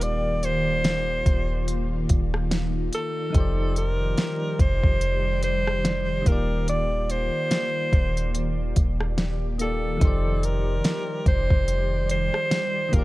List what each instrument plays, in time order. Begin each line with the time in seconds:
Already playing: 808-style bass D#1, synth keys D#3 A#3 F4 G4 D5, ambient pad D#3 A#3 F4 D5
0.01 alto saxophone D5, closed hi-hat
0.43 alto saxophone C5, closed hi-hat
0.84 snare, closed hi-hat
1.26 808-style bass D#1, ambient pad D#4, kick, closed hi-hat
1.68 closed hi-hat
2.09 808-style bass D#1, kick, closed hi-hat
2.34 cross-stick
2.51 snare, closed hi-hat
2.93 alto saxophone A4, closed hi-hat
3.30 synth keys F3 D#4
3.35 808-style bass F1, ambient pad G3 G4 D5, synth keys G4 C5, kick, closed hi-hat
3.40 synth keys D5
3.76 alto saxophone A#4, closed hi-hat
4.18 snare, closed hi-hat
4.59 808-style bass F1, alto saxophone C5, kick, closed hi-hat
4.84 808-style bass F1, kick
5.01 closed hi-hat
5.43 alto saxophone C5, closed hi-hat
5.67 cross-stick
5.85 snare, closed hi-hat
6.22 synth keys D#3 A#3
6.26 808-style bass D#1, ambient pad D#3 A#3 F4, synth keys F4 G4, alto saxophone A#4, kick, closed hi-hat
6.32 synth keys D5
6.68 alto saxophone D5, closed hi-hat
7.10 alto saxophone C5, closed hi-hat
7.51 snare, closed hi-hat
7.93 808-style bass D#1, ambient pad G4, kick, closed hi-hat
8.17 closed hi-hat
8.34 closed hi-hat
8.76 808-style bass D#1, kick, closed hi-hat
9.00 cross-stick
9.18 snare, closed hi-hat
9.58 synth keys D#3 A#3 F4 G4, alto saxophone A4, closed hi-hat
9.63 synth keys D5
9.97 synth keys F3 D#4
10.01 808-style bass F1, ambient pad G3 G4, synth keys G4 C5, kick, closed hi-hat
10.07 synth keys D5
10.43 alto saxophone A#4, closed hi-hat
10.84 snare, closed hi-hat
11.26 808-style bass F1, alto saxophone C5, kick, closed hi-hat
11.50 808-style bass F1, kick
11.68 closed hi-hat
12.10 alto saxophone C5, closed hi-hat
12.34 cross-stick
12.52 snare, closed hi-hat
12.89 synth keys D#3 A#3
12.93 808-style bass D#1, ambient pad A#3 F4, synth keys F4 G4, alto saxophone A#4, kick, closed hi-hat
12.99 synth keys D5